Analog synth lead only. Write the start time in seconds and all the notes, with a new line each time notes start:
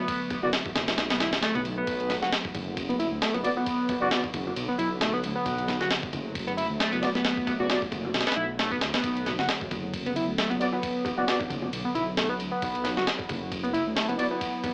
0.00 B3
0.31 B3
0.43 F#4
1.10 B3
1.20 E4
1.43 A3
1.55 B3
1.78 B3
2.10 B3
2.22 F#4
2.89 B3
2.99 E4
3.22 A3
3.34 B3
3.57 B3
3.89 B3
4.02 F#4
4.68 B3
4.78 E4
5.01 A3
5.13 B3
5.35 B3
5.68 B3
5.80 F#4
6.47 B3
6.57 E4
6.80 A3
6.92 B3
7.15 B3
7.47 B3
7.60 F#4
8.27 B3
8.36 E4
8.59 A3
8.72 B3
8.94 B3
9.26 B3
9.39 F#4
10.06 B3
10.16 E4
10.38 A3
10.50 B3
10.73 B3
11.05 B3
11.18 F#4
11.85 B3
11.95 E4
12.17 A3
12.29 B3
12.51 B3
12.84 B3
12.97 F#4
13.63 B3
13.73 E4
13.96 A3
14.09 B3
14.31 B3
14.63 B3